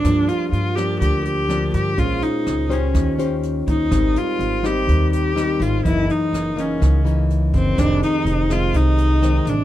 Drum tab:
HH |xxxxxxxx|xxxxxxxx|xxxxxxxx|xxxxxxxx|
SD |r--r--r-|--r-r---|r--r--r-|--r-r---|
BD |o---o---|o---o--o|o---o---|o---o--o|

HH |xxxxxxxx|
SD |r--r--r-|
BD |o---o---|